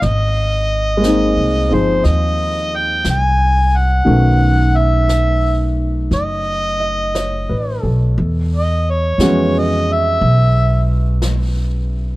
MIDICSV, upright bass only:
0, 0, Header, 1, 2, 480
1, 0, Start_track
1, 0, Tempo, 1011804
1, 14, Time_signature, 4, 2, 24, 8
1, 2414, Tempo, 1020408
1, 5742, End_track
2, 0, Start_track
2, 0, Title_t, "Upright bass"
2, 0, Program_c, 0, 32
2, 10, Note_on_c, 0, 32, 73
2, 632, Note_off_c, 0, 32, 0
2, 648, Note_on_c, 0, 36, 49
2, 799, Note_off_c, 0, 36, 0
2, 811, Note_on_c, 0, 31, 60
2, 960, Note_off_c, 0, 31, 0
2, 972, Note_on_c, 0, 39, 66
2, 1432, Note_off_c, 0, 39, 0
2, 1447, Note_on_c, 0, 36, 59
2, 1912, Note_off_c, 0, 36, 0
2, 1930, Note_on_c, 0, 35, 76
2, 2874, Note_off_c, 0, 35, 0
2, 2894, Note_on_c, 0, 30, 66
2, 3524, Note_off_c, 0, 30, 0
2, 3545, Note_on_c, 0, 33, 48
2, 3695, Note_off_c, 0, 33, 0
2, 3705, Note_on_c, 0, 35, 53
2, 3855, Note_off_c, 0, 35, 0
2, 3867, Note_on_c, 0, 40, 81
2, 4328, Note_off_c, 0, 40, 0
2, 4339, Note_on_c, 0, 41, 65
2, 4801, Note_off_c, 0, 41, 0
2, 4825, Note_on_c, 0, 35, 76
2, 5742, Note_off_c, 0, 35, 0
2, 5742, End_track
0, 0, End_of_file